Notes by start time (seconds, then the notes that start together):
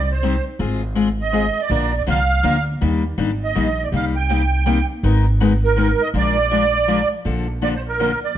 Already playing: C2 D5
0.12 C5
0.22 C3 G3 C4 D#4 G4
0.59 G#1 G#3 C4 F4 G#4
0.95 G#3 C4 F4 G#4
1.22 D#5
1.32 G#3 C4 F4 G#4
1.61 D5
1.70 A#1 D3 F3 A#3 D4 A#4
1.98 D5
2.07 C2 D3 F3 A#3 D4 A#4 F5
2.43 D2 D3 F3 A#3 D4 A#4
2.81 D#2 D#3 G3 A#3 D4 G4
3.18 G#1 D#3 G3 A#3 D4 G4
3.44 D#5
3.55 A#1 D#3 G3 A#3 D4 G4
3.83 D5
3.92 C2 C3 G3 A#3 D#4 G4 F5
4.16 G5
4.29 C3 G3 A#3 D#4 G4
4.66 C3 G3 A#3 D#4 G4
5.03 G#1 D#3 G#3 B3 D#4 A#4
5.40 D#3 G#3 B3 D#4 A#4
5.64 A#4
5.76 D#3 G#3 B3 D#4 A#4
6.02 D#5
6.14 A#1 F3 G#3 D4 F4 A#4 D5
6.51 F3 G#3 D4 F4 A#4
6.88 F3 G#3 D4 F4 A#4
7.25 A#1 D3 F3 A#3 D4 A4
7.62 D3 F3 A#3 D4 A4 D5
7.76 C5
7.88 A#4
7.99 D3 F3 A#3 D4 A4
8.24 D5